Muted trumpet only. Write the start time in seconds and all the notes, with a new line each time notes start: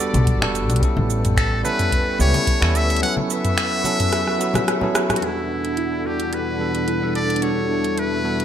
Already playing: D5
1.37 A4
1.65 B4
2.21 C#5
2.76 E5
3.03 F#5
3.31 E5
5.17 F#4
5.24 E4
6.07 G4
6.34 B4
7.16 D5
7.43 C#5
7.99 B4